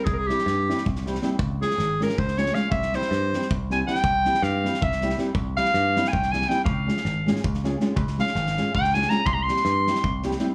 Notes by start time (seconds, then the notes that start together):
0.04 C2 G#4, kick
0.13 G#4 A#4
0.27 G3 C4 E4 G4, snare
0.39 snare
0.46 G2, snare
0.68 G3 C4 E4 G4, snare
0.78 snare
0.86 C2, kick
0.96 snare
1.06 G3 C4 E4 G4, snare
1.15 snare
1.22 G3 C4 E4 G4, snare
1.39 C#2, kick
1.61 G#3 C#4 F4 G#4, snare
1.71 snare
1.78 G#1, snare
2.00 G#3 C#4 F4 G#4 A#4, snare
2.09 snare
2.18 C#2 C5, kick
2.28 snare
2.37 G#3 C#4 F4 G#4 C#5, snare
2.46 snare
2.54 G#3 C#4 F4 G#4 F5, snare
2.71 C2 E5, kick
2.82 snare
2.93 G3 C4 E4 G4 C5, snare
3.02 snare
3.11 G2, snare
3.33 G3 C4 E4 G4, snare
3.42 snare
3.51 C2, kick
3.70 G3 C4 E4 G4 G#5, snare
3.87 G3 C4 E4 G4 G5, snare
3.95 snare
4.04 C2, kick
4.25 G3 C4 E4 G4, snare
4.34 snare
4.42 G2 F5, snare
4.63 G3 C4 E4 G4, snare
4.74 snare
4.82 C2 E5, kick
4.92 snare
5.02 G3 C4 E4 G4, snare
5.10 snare
5.18 G3 C4 E4 G4, snare
5.35 C2, kick
5.56 G3 C4 E4 G4 F5, snare
5.65 snare
5.74 G2, snare
5.95 G3 C4 E4 G4, snare
6.05 G#5, snare
6.12 C2 G5, kick
6.23 snare
6.32 G3 C4 E4 G4 G#5, snare
6.42 snare
6.48 G3 C4 E4 G4 G5, snare
6.64 C#2 F5, kick
6.86 G#3 C#4 F4 G#4, snare
6.97 snare
7.05 G#1, snare
7.26 G#3 C#4 F4 G#4, snare
7.36 snare
7.44 C#2, kick
7.54 snare
7.63 G#3 C#4 F4 G#4, snare
7.80 G#3 C#4 F4 G#4, snare
7.96 C#2, kick
8.08 snare
8.18 G#3 C#4 F4 G#4 F5, snare
8.27 snare
8.35 G#1, snare
8.47 snare
8.57 G#3 C#4 F4 G#4, snare
8.74 C#2 G5, kick
8.84 snare
8.94 G#3 C#4 F4 G#4 G#5, snare
9.02 snare
9.10 G#3 C#4 F4 G#4 A#5, snare
9.26 C2 C6, kick
9.34 A#5
9.43 C6
9.48 G3 C4 E4 G4, snare
9.57 snare
9.65 G2, snare
9.87 G3 C4 E4 G4, snare
9.95 snare
10.04 C2, kick
10.23 G3 C4 E4 G4, snare
10.31 snare
10.39 G3 C4 E4 G4, snare